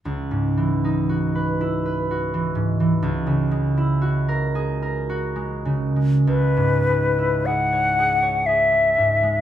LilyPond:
<<
  \new Staff \with { instrumentName = "Flute" } { \time 6/8 \key cis \dorian \tempo 4. = 39 r2. | r2. | b'4 fis''4 e''4 | }
  \new Staff \with { instrumentName = "Harp" } { \time 6/8 \key cis \dorian cis,16 gis,16 e16 dis'16 fis'16 b'16 e'16 b'16 fis'16 e16 gis,16 e16 | cis,16 cis16 gis16 e'16 fis'16 ais'16 gis'16 ais'16 fis'16 gis16 cis16 gis16 | cis,16 gis,16 gis16 e'16 gis'16 cis''16 gis'16 cis''16 gis'16 gis16 gis,16 gis16 | }
>>